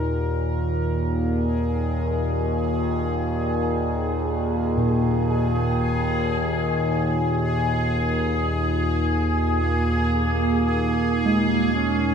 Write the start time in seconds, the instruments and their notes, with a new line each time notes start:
Already playing: synth drone D#2 A#2, synth texture A#4
0.93 synth texture G#4
4.77 kettle gongs A#2
9.57 duduk A#3
11.26 kettle gongs G#3
11.74 duduk C#4